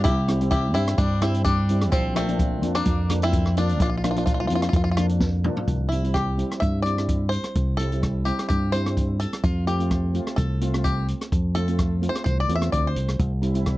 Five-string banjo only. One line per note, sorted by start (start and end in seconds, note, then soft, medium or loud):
0.04 0.48 E4 medium
0.04 0.50 G4 loud
0.51 0.73 E4 medium
0.51 0.73 G4 loud
0.74 0.97 C4 medium
0.74 0.99 E4 loud
0.98 1.20 G3 medium
0.98 1.23 D4 loud
1.22 1.44 C4 medium
1.22 1.44 E4 loud
1.45 1.89 G3 medium
1.45 1.93 D4 loud
1.92 2.14 F3 medium
1.92 2.14 C4 loud
2.16 2.71 A3 medium
2.16 2.71 C4 loud
2.75 3.19 A#3 medium
2.75 3.23 D4 medium
3.23 3.55 C4 medium
3.23 3.57 E4 loud
3.58 3.79 D4 medium
3.58 3.79 F4 medium
3.82 3.88 D4 medium
3.82 3.88 F4 medium
3.90 3.96 F4 medium
3.97 4.03 F4 medium
4.04 4.10 F4 medium
4.11 4.17 F4 medium
4.18 4.24 F4 medium
4.26 4.32 F4 medium
4.34 4.39 F4 medium
4.40 4.46 F4 medium
4.47 4.54 F4 medium
4.55 4.61 F4 medium
4.63 4.68 F4 medium
4.69 4.75 F4 medium
4.76 4.83 F4 medium
4.84 4.90 F4 medium
4.91 4.96 F4 medium
4.97 5.05 F4 medium
5.89 6.14 E4 medium
6.14 6.60 G4 medium
6.60 6.82 E5 medium
6.82 7.29 D5 loud
7.29 7.74 C5 medium
7.77 8.27 A4 medium
8.25 8.47 G4 medium
8.49 8.73 G4 medium
8.72 9.21 C5 medium
9.20 9.42 A4 medium
9.44 9.66 F4 medium
9.67 10.40 G4 medium
10.36 10.86 A4 medium
10.84 11.06 G4 medium
11.55 12.12 A4 medium
12.09 12.23 C5 medium
12.24 12.39 C5 medium
12.40 12.55 D5 medium
12.55 12.72 E5 medium
12.72 12.89 D5 medium
12.87 13.31 C5 medium